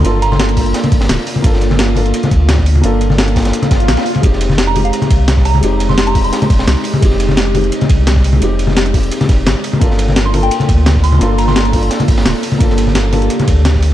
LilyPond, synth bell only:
\new Staff \with { instrumentName = "Synth bell" } { \time 4/4 \key g \phrygian \tempo 4 = 172 r8 bes''16 c'''16 c'''16 r2 r8. | r1 | r1 | r4 r16 bes''8 f''8 r4 r16 bes''8 |
r8. c'''8 bes''8 c'''4 r4 r16 | r1 | r1 | r4 r16 c'''8 g''8 r4 r16 c'''8 |
r8 bes''16 c'''16 r2. | r1 | }